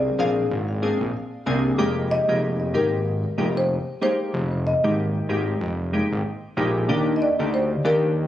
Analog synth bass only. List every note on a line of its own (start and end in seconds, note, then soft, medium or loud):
0.00 0.10 C2 medium
0.19 0.45 A#1 medium
0.51 0.92 G#1 loud
1.01 1.12 A#1 medium
1.46 1.72 C2 loud
1.78 2.19 F1 loud
2.29 2.76 F1 medium
2.74 3.26 G#1 medium
3.38 3.79 F1 medium
4.34 4.74 F1 loud
4.84 5.21 G#1 medium
5.29 5.55 G#1 medium
5.61 6.02 F1 loud
6.12 6.23 G#1 medium
6.57 6.90 A#1 loud
6.89 7.30 D#2 loud
7.39 7.76 D2 medium
7.85 8.27 D#2 loud